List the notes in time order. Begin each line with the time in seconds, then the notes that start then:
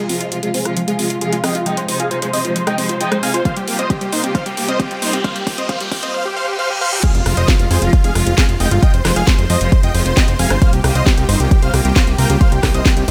Already playing: riser
0.09 C3 F3 G#3 C4 F4, open hi-hat
0.21 F4 C5 D#5, closed hi-hat
0.32 C3 F3 G#3 F4, closed hi-hat
0.43 C3 F3 G#3 F4, closed hi-hat
0.54 C3 F3 G#3 C4 F4 G#4 C5, open hi-hat
0.65 C3 F3 G#3 F4, cross-stick, closed hi-hat
0.77 F3 F4, closed hi-hat
0.88 C3 F3 G#3 F4 G#4 F5, closed hi-hat
0.99 C3 F3 G#3 C4 F4, open hi-hat
1.10 F4, closed hi-hat
1.21 C3 F3 G#3 F4 G#4 F5, closed hi-hat
1.33 G#3 F4, closed hi-hat
1.44 C3 F3 G#3 C4 F4 D#5 G5, cross-stick, open hi-hat
1.55 F4, closed hi-hat
1.66 C3 F3 G#3 D#4 D#5 G5, closed hi-hat
1.77 G#3 C5, closed hi-hat
1.88 C3 F3 G#3 C4 D#4 C5, open hi-hat
2.00 F4 G#4 F5, closed hi-hat
2.11 C3 F3 G#3 D#4 F4 C5, closed hi-hat
2.22 C3 F3 G#3 D#4 C5, closed hi-hat
2.33 C3 F3 G#3 C4 D#4 C5 D#5, open hi-hat
2.44 C3 F3 G#3 D#4 F4 C5, closed hi-hat
2.56 F3 C5, closed hi-hat
2.67 C3 F3 G#3 D#4 D#5 G5, cross-stick, closed hi-hat
2.78 C3 F3 G#3 C4 D#4 C5, open hi-hat
2.89 F4 C5, closed hi-hat
3.00 C3 F3 G#3 D#4 F4 D#5 G5, closed hi-hat
3.12 G#3 C5, cross-stick, closed hi-hat
3.23 C3 F3 G#3 C4 D#4 F5 G#5, open hi-hat
3.34 F4 C5, closed hi-hat
3.45 C3 F3 G3 A#3 F4 C5 F5, kick, closed hi-hat
3.56 G3 G4, closed hi-hat
3.67 C3 G3 A#3 F4 G4, open hi-hat
3.79 C4 C5 D#5, closed hi-hat
3.90 C3 G3 A#3 C4 F4 G4, kick, closed hi-hat
4.01 C3 G3 A#3 F4 G4, closed hi-hat
4.12 C3 G3 A#3 D#4 F4 C5, open hi-hat
4.24 C3 G3 A#3 C4 F4 G4, closed hi-hat
4.35 F3 C5 F5, kick, closed hi-hat
4.46 C3 G3 A#3 F4 G4, closed hi-hat
4.57 C3 G3 A#3 F4 G4, open hi-hat
4.68 C4 C5 D#5, closed hi-hat
4.80 C3 G3 A#3 C4 F4 G4, kick, closed hi-hat
4.91 G3 G4, closed hi-hat
5.02 C3 G3 A#3 D#4 F4 C5, open hi-hat
5.13 C4 G4, closed hi-hat
5.24 C3 F3 G3 A#3 F4 C5 F5, kick, closed hi-hat
5.36 G3 G4, closed hi-hat
5.47 C3 G3 A#3 F4 G4, kick, open hi-hat
5.58 C4 C5 D#5, closed hi-hat
5.69 C3 F3 G3 A#3 F4 C5 F5, kick, closed hi-hat
5.80 C3 G3 A#3 F4 G4, closed hi-hat
5.92 C3 G3 A#3 F4 G4, kick, open hi-hat
6.03 C3 G3 A#3 C4 F4 C5 D#5, closed hi-hat
6.14 C5 F5, reverse cymbal
6.25 G4
6.36 C5 F5
6.48 G4
6.59 C5 F5
6.70 G4
6.81 C5 F5
6.92 G4
7.03 C3 F3 G#3 F4 G#4 F5, kick, closed hi-hat, crash, impact
7.15 F1 F4, closed hi-hat
7.26 F1 C3 F3 G#3 F4, cross-stick, open hi-hat
7.37 F1 C5 D#5, closed hi-hat
7.48 C3 F3 G#3 F4, kick, snare, closed hi-hat
7.59 F1 C3 F3 G#3 F4, closed hi-hat
7.71 F2 C3 F3 G#3 F4 G#4 C5, open hi-hat
7.82 F1 C3 F3 G#3 F4, closed hi-hat
7.93 F4, kick, closed hi-hat
8.04 F1 C3 F3 G#3 F4 G#4 F5, closed hi-hat
8.15 F1 C3 F3 G#3 F4, cross-stick, open hi-hat
8.26 F1 F4, closed hi-hat
8.38 C3 F3 G#3 F4 G#4 F5, kick, snare, closed hi-hat
8.49 F1 F4, closed hi-hat
8.60 F1 C3 F3 G#3 F4 D#5 G5, open hi-hat
8.71 G1 F4, closed hi-hat
8.83 C3 F3 G#3 F4 D#5 G5, kick, closed hi-hat
8.94 F1 C5, closed hi-hat
9.05 F1 C3 F3 G#3 F4 C5, cross-stick, snare, open hi-hat
9.16 F1 G#4 F5, closed hi-hat
9.27 C3 F3 G#3 F4 C5, kick, snare, closed hi-hat
9.39 F1 C3 F3 G#3 F4 C5, closed hi-hat
9.50 F2 C3 F3 G#3 F4 C5 D#5, open hi-hat
9.61 F1 C3 F3 G#3 F4 C5, closed hi-hat
9.72 C5, kick, closed hi-hat
9.83 F1 C3 F3 G#3 F4 D#5 G5, closed hi-hat
9.94 F1 C3 F3 G#3 F4 C5, open hi-hat
10.06 F1 C5, closed hi-hat
10.17 C3 F3 G#3 F4 D#5 G5, kick, snare, closed hi-hat
10.28 F1 C5, closed hi-hat
10.39 F1 C3 F3 G#3 F4 F5 G#5, open hi-hat
10.50 G1 C5, cross-stick, closed hi-hat
10.62 C3 G3 A#3 F4 C5 F5, kick, closed hi-hat
10.73 C2 G4, closed hi-hat
10.84 C2 C3 G3 A#3 F4 G4, cross-stick, open hi-hat
10.95 C2 C5 D#5, closed hi-hat
11.06 C3 G3 A#3 F4 G4, kick, snare, closed hi-hat
11.18 C2 C3 G3 A#3 F4 G4, closed hi-hat
11.29 G1 C3 G3 A#3 D#4 F4 C5, open hi-hat
11.40 C2 C3 G3 A#3 F4 G4, closed hi-hat
11.51 G4, kick, closed hi-hat
11.62 C2 C3 G3 A#3 F4 C5 F5, closed hi-hat
11.74 C2 C3 G3 A#3 F4 G4, cross-stick, open hi-hat
11.85 C2 G4, closed hi-hat
11.96 C3 G3 A#3 F4 C5 F5, kick, snare, closed hi-hat
12.07 C2 G4, closed hi-hat
12.18 C2 C3 G3 A#3 F4 A#4 G5, open hi-hat
12.30 C#2 G4, closed hi-hat
12.41 C3 G3 A#3 F4 C5 F5, kick, closed hi-hat
12.52 C2 G4, closed hi-hat
12.63 C3 G3 A#3 F4 G4, kick, cross-stick, snare, open hi-hat
12.74 C2 C5 D#5, closed hi-hat
12.86 C3 G3 A#3 F4 G4, kick, snare, closed hi-hat
12.97 C2 C3 G3 A#3 F4 G4, closed hi-hat
13.08 G3 A#3